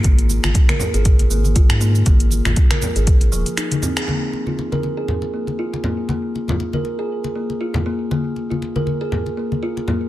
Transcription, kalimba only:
X:1
M:4/4
L:1/16
Q:"Swing 16ths" 1/4=119
K:Ab
V:1 name="Kalimba"
B, z2 F z B z A z2 B, z F z B, z | B, z2 F z B z A z2 F, z E z C A | B, z2 F z B z A z2 B, z F z B, z | B, z2 F z B z A z2 B, z F z B, z |
B, z2 F z B z A z2 B, z F z B, z |]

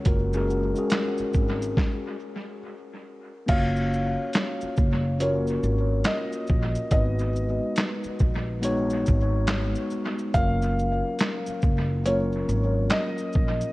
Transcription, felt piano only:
X:1
M:4/4
L:1/8
Q:"Swing 16ths" 1/4=70
K:F#
V:1 name="Felt piano"
f6 z2 | e4 c2 d2 | d6- d z | e4 c2 d2 |]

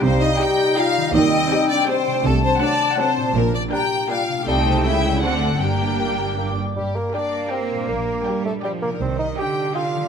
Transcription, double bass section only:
X:1
M:3/4
L:1/8
Q:1/4=161
K:Gm
V:1 name="Double bass section" clef=bass
C,,2 z4 | E,,2 z4 | C,,2 z4 | B,,,2 z4 |
C,,2 ^C,,2 D,,2 | G,,,4- G,,, z | G,,2 z4 | B,,,2 z4 |
C,,2 z4 |]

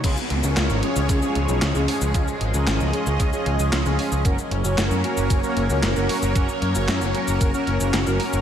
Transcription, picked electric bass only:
X:1
M:4/4
L:1/16
Q:1/4=114
K:C#mix
V:1 name="Picked electric bass" clef=bass
C,, z C,, C,, C,, G,,, z C,, C,, z C,, B,,, C,, C,, z C,, | C,, z G,,, C,, G,,, C,, z C,, C,, z C,, C,, C,, C,, z C,, | F,,, z F,,, F,,, F,,, F,, z F,,, F,,, z F,,, C,, F,,, F,,, z F,,, | F,,, z F,, F,,, F,, F,,, z F,,, F,,, z F,,, F,,, F,,, F,,, z F,,, |]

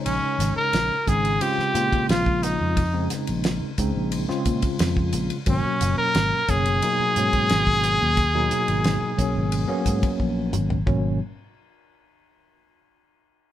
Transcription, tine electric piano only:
X:1
M:4/4
L:1/16
Q:1/4=89
K:G#dor
V:1 name="Tine electric piano"
[C,G,CD]4- [C,G,CD] z [C,G,^B,D]2 [C,G,B,E]2 [C,G,B,E]6 | z [C,G,^B,D]4- [C,G,B,D] [C,G,B,D]3 [C,G,B,E]6 z | [B,,F,A,C]4- [B,,F,A,C] z [B,,F,A,C]2 [B,,F,A,D]2 [B,,F,A,C]6 | z [B,,F,A,D]4- [B,,F,A,D] [B,,F,A,C]3 [F,A,B,C]6 z |
[B,,F,A,C]2 z12 z2 |]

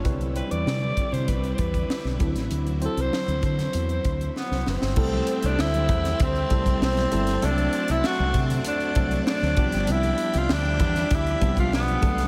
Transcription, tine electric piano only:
X:1
M:4/4
L:1/8
Q:1/4=98
K:C
V:1 name="Tine electric piano"
[G,CEB] [G,CEB]3 z3 [^F,CEAB]- | [^F,CEAB] [F,CEc]3 z4 | [G,A,CEA]3 z2 [G,A,CEA]2 [G,A,CEA] | [^F,A,CDA]3 z2 [F,A,CDA]2 [=F,G,B,DG]- |
[F,G,B,DG]2 z3 [F,G,B,DFG]2 [C,^F,A,DA] |]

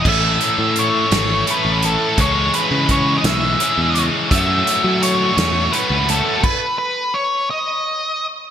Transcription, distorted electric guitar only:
X:1
M:6/8
L:1/8
Q:3/8=56
K:Alyd
V:1 name="Distorted electric guitar"
[E,A,C]3 [E,A,C]3 | [E,G,C]3 [E,G,C]3 | [F,A,C]3 [F,A,C]3 | z6 |]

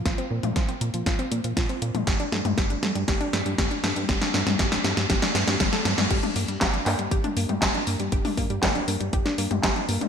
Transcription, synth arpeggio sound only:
X:1
M:4/4
L:1/16
Q:1/4=119
K:Gm
V:1 name="Synth arpeggio sound"
F C B, F, F C B, F, F C B, F, F C B, F, | G D A, G, G D A, G, G D A, G, G D A, G, | G D A, G, G D A, G, G D A, G G, A d d | G D B, G, G D B, G, G D B, G, G D B, G, |
G D B, G, G D B, G, G D B, G, G D B, G, |]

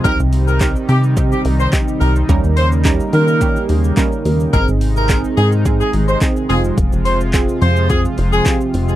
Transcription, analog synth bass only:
X:1
M:4/4
L:1/16
Q:1/4=107
K:Cm
V:1 name="Analog synth bass" clef=bass
C,, C,,4- C,, C,4 C,,2 z2 C,,2 | E,, E,,4- E,, E,4 E,,2 z2 E,,2 | A,,, A,,,4- A,,, A,,4 A,,,2 z2 F,,,2 | F,,, F,,,4- F,,, F,,4 F,,,2 z2 F,,,2 |]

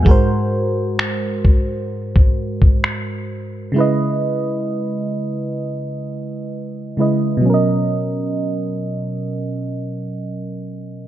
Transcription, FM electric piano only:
X:1
M:4/4
L:1/8
Q:"Swing 16ths" 1/4=65
K:B
V:1 name="FM electric piano"
[G,,G,FA^B]8 | [C,G,EBd]6- [C,G,EBd] [C,G,EBd] | [B,,F,CAd]8 |]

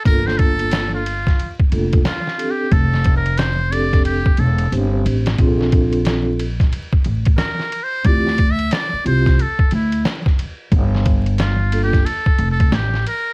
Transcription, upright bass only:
X:1
M:4/4
L:1/8
Q:"Swing 16ths" 1/4=90
K:Gdor
V:1 name="Upright bass" clef=bass
G,,,4 z F,,, z2 | F,,,4- F,,, E,,, G,,, A,,, | B,,,4 z A,,, z2 | D,,2 z C,, z D,, z2 |
G,,,4 z F,,, A,,, z |]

